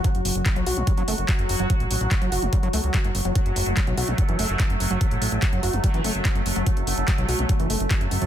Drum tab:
HH |xxoxxxoxxxoxxxox|xxoxxxoxxxoxxxox|xxoxxxoxxxoxxxox|xxo-xxoxxxoxxxox|
CP |----x-------x---|----x-------x---|----x-------x---|----x-------x---|
BD |o---o---o---o---|o---o---o---o---|o---o---o---o---|o---o---o---o---|

HH |xxoxxxoxxxoxxxox|
CP |----x-------x---|
BD |o---o---o---o---|